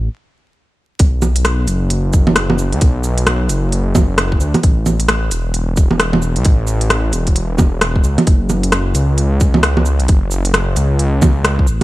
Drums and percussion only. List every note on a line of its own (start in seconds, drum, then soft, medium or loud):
0.99 kick loud
0.99 closed hi-hat medium
1.22 low bongo soft
1.22 cabasa medium
1.36 closed hi-hat medium
1.45 cross-stick loud
1.45 closed hi-hat medium
1.68 closed hi-hat medium
1.68 cabasa medium
1.90 closed hi-hat medium
2.13 kick loud
2.13 cabasa medium
2.27 low bongo medium
2.36 cross-stick loud
2.36 closed hi-hat medium
2.50 low bongo medium
2.58 cabasa medium
2.72 closed hi-hat soft
2.81 kick loud
2.81 closed hi-hat medium
3.04 cabasa medium
3.18 closed hi-hat medium
3.27 cross-stick loud
3.27 closed hi-hat medium
3.49 closed hi-hat medium
3.49 cabasa medium
3.72 closed hi-hat medium
3.95 kick loud
3.95 low bongo medium
3.95 cabasa medium
4.18 cross-stick loud
4.18 closed hi-hat medium
4.32 kick medium
4.40 cabasa medium
4.54 closed hi-hat soft
4.54 low bongo medium
4.63 kick loud
4.63 closed hi-hat medium
4.86 low bongo soft
4.86 cabasa medium
5.00 closed hi-hat medium
5.09 cross-stick loud
5.09 closed hi-hat medium
5.31 closed hi-hat medium
5.31 cabasa medium
5.54 closed hi-hat medium
5.77 kick loud
5.77 cabasa medium
5.91 low bongo medium
6.00 cross-stick loud
6.00 closed hi-hat medium
6.13 low bongo medium
6.22 cabasa medium
6.36 closed hi-hat soft
6.45 kick loud
6.45 closed hi-hat medium
6.67 cabasa medium
6.81 closed hi-hat medium
6.90 cross-stick loud
6.90 closed hi-hat medium
7.13 closed hi-hat medium
7.13 cabasa medium
7.27 kick medium
7.27 closed hi-hat soft
7.36 closed hi-hat medium
7.58 kick loud
7.58 low bongo medium
7.58 cabasa medium
7.81 cross-stick loud
7.81 closed hi-hat medium
7.96 kick medium
8.04 cabasa medium
8.18 closed hi-hat soft
8.18 low bongo medium
8.27 kick loud
8.27 closed hi-hat medium
8.50 low bongo soft
8.50 cabasa medium
8.64 closed hi-hat medium
8.72 cross-stick loud
8.72 closed hi-hat medium
8.95 closed hi-hat medium
8.95 cabasa medium
9.18 closed hi-hat medium
9.40 kick loud
9.40 cabasa medium
9.54 low bongo medium
9.63 cross-stick loud
9.63 closed hi-hat medium
9.77 low bongo medium
9.86 cabasa medium
10.00 closed hi-hat soft
10.08 kick loud
10.08 closed hi-hat medium
10.31 cabasa medium
10.45 closed hi-hat medium
10.54 cross-stick loud
10.54 closed hi-hat medium
10.76 closed hi-hat medium
10.76 cabasa medium
10.99 closed hi-hat medium
11.22 kick loud
11.22 low bongo medium
11.22 cabasa medium
11.44 cross-stick loud
11.44 closed hi-hat medium
11.59 kick medium
11.67 cabasa medium